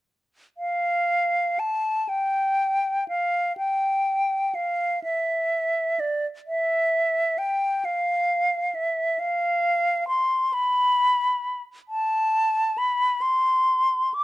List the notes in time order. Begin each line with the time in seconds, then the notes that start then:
0.58 F5
1.59 A5
2.09 G5
3.08 F5
3.57 G5
4.55 F5
5.04 E5
6.00 D5
6.47 E5
7.38 G5
7.85 F5
8.75 E5
9.19 F5
10.08 C6
10.53 B5
11.89 A5
12.78 B5
13.22 C6
14.14 D6